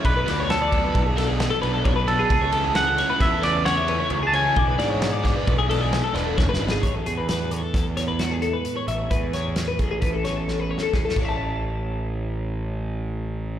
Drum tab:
CC |------------------------------|------------------------------|------------------------------|------------------------------|
RD |x--x--x--x--x--x--x--x--x--x--|x--x--x--x--x--x--x--x--x--x--|x--x--x--x--x--x--x--x--------|------------------------------|
HH |------------------------------|------------------------------|------------------------------|x--x--x--x--x--x--x--x--x--x--|
SD |---o--o--------o--o-----------|------o--o--o--o--o-----------|---o--o--o--------o--o--o-o-o-|------o-----o--o--o-----------|
BD |o--------o--o-----------o-----|o-----------o-----------------|o--------o--o-----------o-----|o-----------o-----------------|

CC |---------------------------x--|------------------------------|
RD |------------------------------|------------------------------|
HH |x--x--x--x--x--x--------------|------------------------------|
SD |---o--o--------o--o---o-o-o---|------------------------------|
BD |o--------o--o-----------o--o--|------------------------------|